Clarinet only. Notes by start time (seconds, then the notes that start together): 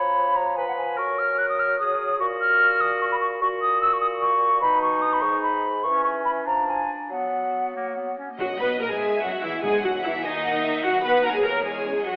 Already playing: C#5
0.57 B4
0.97 A#4
1.80 G#4
2.20 F#4
3.42 F#4
4.63 D#4
5.85 C#4
6.46 D4
7.11 B3
7.75 A#3
7.96 B3
8.18 C#4
8.31 A#3